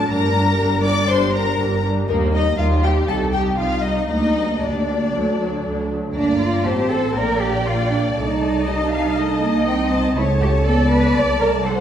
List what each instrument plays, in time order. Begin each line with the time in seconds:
Already playing: violin section A5
0.10 double bass section G1, cello section G2, viola section G3 D4, violin section A#4 A#5
0.35 viola section G3 D4
0.59 double bass section G1, cello section G2, viola section G3 D4
0.83 viola section G3 D4, violin section D5 D6
1.08 double bass section G1, cello section G2, viola section G3 D4, violin section C5 C6
1.33 viola section G3 D4, violin section A#4 A#5
1.58 double bass section G1, cello section G2, viola section G3 D4
1.83 viola section G3 D4
2.08 double bass section D#2, cello section D#2, viola section G3 D#4, violin section A#3 A#4
2.33 viola section G3 D#4, violin section D#4 D#5
2.57 double bass section D#2, cello section D#2, viola section G3 D#4, violin section F4 F5
2.83 viola section G3 D#4, violin section G4 G5
3.08 cello section C2, double bass section C2, viola section G3 D#4, violin section A4 A5
3.33 viola section G3 D#4, violin section G4 G5
3.58 cello section C2, double bass section C2, viola section G3 D#4, violin section F4 F5
3.82 viola section G3 D#4, violin section D#4 D#5
4.09 double bass section D2, cello section D2, viola section G3 A#3, violin section D#4 D#5
4.36 viola section G3 A#3
4.61 double bass section D2, cello section D2, viola section G3 A#3, violin section D4 D5
4.88 viola section G3 A#3
5.13 double bass section D2, cello section D2, viola section F#3 A3
5.38 viola section F#3 A3
5.63 double bass section D2, cello section D2, viola section F#3 A3
5.89 viola section F#3 A3
6.14 double bass section G1, viola section A#3, cello section D4, violin section D5 A#5
6.40 cello section F4
6.65 double bass section A1, viola section C4, cello section G4, violin section C5 A5
6.91 cello section A4
7.15 double bass section A#1, viola section A#3, cello section A#4, violin section D5 G5
7.40 cello section G4
7.66 viola section A#3, cello section F4
7.91 cello section D4
8.16 double bass section C2, viola section A3, cello section D#4, violin section A5
8.66 viola section G3, violin section D#5
8.92 violin section F5
9.16 viola section A3, violin section D#5
9.43 viola section A#3
9.67 viola section C4, violin section G5
9.91 violin section A5
10.15 double bass section C#2, viola section A3, cello section E4, violin section C#5 A5
10.41 cello section G4
10.64 viola section B3, cello section A4, violin section D5
10.90 cello section B4
11.15 double bass section C2, viola section A3, cello section D5
11.40 cello section A#4
11.65 viola section A3, cello section A4, violin section C5 F#5